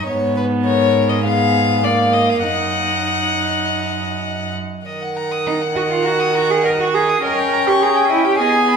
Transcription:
0.06 2.39 G#2 medium
0.06 1.19 B3 soft
0.06 0.35 C#5 medium
0.37 0.45 B4 soft
0.66 1.26 A#4 soft
0.66 1.11 C#5 medium
1.09 1.24 D#5 soft
1.23 1.84 B3 soft
1.23 1.81 G#4 soft
1.23 1.85 F5 medium
1.82 2.44 A#3 soft
1.82 2.15 D5 medium
1.82 2.42 F5 soft
2.13 2.31 D#5 soft
2.30 2.43 F5 soft
2.42 4.63 F#2 soft
2.42 4.66 D#4 soft
2.42 4.52 D#5 soft
2.42 4.53 F#5 medium
4.86 7.19 D#3 soft
4.86 5.04 D#5 soft
4.86 7.19 F#5 soft
5.02 5.18 F#5 soft
5.17 5.33 A#5 soft
5.32 5.48 D#6 soft
5.46 5.54 D#4 soft
5.46 5.63 A#5 soft
5.62 5.77 F#5 soft
5.76 5.82 F#4 medium
5.76 5.93 D#5 soft
5.91 6.07 F4 soft
5.91 6.04 F#5 soft
6.05 6.35 F#4 medium
6.05 6.21 A#5 soft
6.20 6.37 D#6 soft
6.35 6.52 F#4 medium
6.35 6.52 A#5 soft
6.50 6.64 G#4 medium
6.50 6.65 F#5 soft
6.64 6.71 A#4 medium
6.64 6.81 D#5 soft
6.80 6.96 F#4 medium
6.80 6.96 F#5 soft
6.94 7.22 G#4 medium
6.94 7.11 A#5 soft
7.09 7.24 D#6 soft
7.23 8.41 C#4 soft
7.23 7.69 A#4 medium
7.23 7.40 D#5 soft
7.23 8.37 G5 soft
7.38 7.55 G5 soft
7.54 7.70 A#5 soft
7.67 7.83 G4 medium
7.67 7.85 C#6 soft
7.82 8.10 G#4 medium
7.82 7.98 A#5 medium
7.97 8.11 G5 soft
8.10 8.25 E4 medium
8.10 8.27 D#5 soft
8.25 8.38 G4 medium
8.25 8.38 G5 soft
8.38 8.77 B3 medium
8.38 8.77 G#4 medium
8.38 8.55 D#5 medium
8.38 8.77 G#5 soft
8.53 8.69 G#5 soft
8.68 8.77 B5 medium

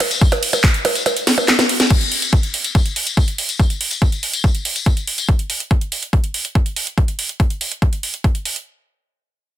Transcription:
0.00 open hi-hat loud
0.00 ride medium
0.00 percussion blips soft
0.11 closed hi-hat medium
0.11 tambourine medium
0.21 kick loud
0.21 closed hi-hat medium
0.21 tambourine medium
0.32 closed hi-hat medium
0.32 tambourine soft
0.32 percussion blips medium
0.43 open hi-hat loud
0.43 ride medium
0.53 closed hi-hat medium
0.53 tambourine medium
0.53 percussion blips soft
0.64 kick loud
0.64 clap loud
0.64 closed hi-hat medium
0.74 closed hi-hat medium
0.74 tambourine soft
0.85 open hi-hat loud
0.85 ride medium
0.85 percussion blips medium
0.95 closed hi-hat medium
0.95 tambourine medium
1.06 closed hi-hat medium
1.06 tambourine medium
1.06 percussion blips soft
1.17 closed hi-hat medium
1.17 tambourine soft
1.27 snare medium
1.27 open hi-hat loud
1.27 ride medium
1.38 closed hi-hat medium
1.38 tambourine medium
1.38 percussion blips medium
1.48 snare medium
1.48 clap loud
1.48 closed hi-hat medium
1.48 tambourine medium
1.58 snare medium
1.58 closed hi-hat medium
1.58 tambourine soft
1.58 percussion blips soft
1.69 open hi-hat loud
1.69 ride medium
1.80 snare medium
1.80 closed hi-hat medium
1.80 tambourine medium
1.90 kick loud
1.90 closed hi-hat medium
1.90 crash medium
1.90 tambourine medium
2.01 closed hi-hat medium
2.01 tambourine soft
2.12 open hi-hat loud
2.22 closed hi-hat medium
2.22 tambourine medium
2.32 kick loud
2.32 closed hi-hat medium
2.32 tambourine medium
2.43 closed hi-hat medium
2.43 tambourine soft
2.54 open hi-hat loud
2.64 closed hi-hat medium
2.64 tambourine medium
2.75 kick loud
2.75 closed hi-hat medium
2.75 tambourine medium
2.86 closed hi-hat medium
2.86 tambourine soft
2.96 open hi-hat loud
3.06 closed hi-hat medium
3.06 tambourine medium
3.17 kick loud
3.17 closed hi-hat medium
3.17 tambourine medium
3.28 closed hi-hat medium
3.28 tambourine soft
3.38 open hi-hat loud
3.49 closed hi-hat medium
3.49 tambourine medium
3.60 kick loud
3.60 closed hi-hat medium
3.60 tambourine medium
3.70 closed hi-hat medium
3.70 tambourine soft
3.81 open hi-hat loud
3.91 closed hi-hat medium
3.91 tambourine medium
4.02 kick loud
4.02 closed hi-hat medium
4.12 closed hi-hat medium
4.12 tambourine soft
4.23 open hi-hat loud
4.33 closed hi-hat medium
4.33 tambourine medium
4.44 kick loud
4.44 closed hi-hat medium
4.44 tambourine medium
4.55 closed hi-hat medium
4.55 tambourine soft
4.65 open hi-hat loud
4.76 closed hi-hat medium
4.76 tambourine medium
4.86 kick loud
4.86 closed hi-hat medium
4.97 closed hi-hat medium
4.97 tambourine soft
5.07 open hi-hat loud
5.18 closed hi-hat medium
5.18 tambourine medium
5.29 kick loud
5.29 closed hi-hat medium
5.39 closed hi-hat medium
5.50 open hi-hat loud
5.60 closed hi-hat medium
5.71 kick loud
5.71 closed hi-hat medium
5.81 closed hi-hat medium
5.92 open hi-hat loud
6.03 closed hi-hat medium
6.13 kick loud
6.13 closed hi-hat medium
6.24 closed hi-hat medium
6.34 open hi-hat loud
6.45 closed hi-hat medium
6.55 kick loud
6.55 closed hi-hat medium
6.66 closed hi-hat medium
6.76 open hi-hat loud
6.87 closed hi-hat medium
6.98 kick loud
6.98 closed hi-hat medium
7.08 closed hi-hat medium
7.19 open hi-hat loud
7.29 closed hi-hat medium
7.40 kick loud
7.40 closed hi-hat medium
7.50 closed hi-hat medium
7.61 open hi-hat loud
7.72 closed hi-hat medium
7.82 kick loud
7.82 closed hi-hat medium
7.93 closed hi-hat medium
8.03 open hi-hat loud
8.14 closed hi-hat medium
8.24 kick loud
8.24 closed hi-hat medium
8.35 closed hi-hat medium
8.45 open hi-hat loud
8.56 closed hi-hat medium

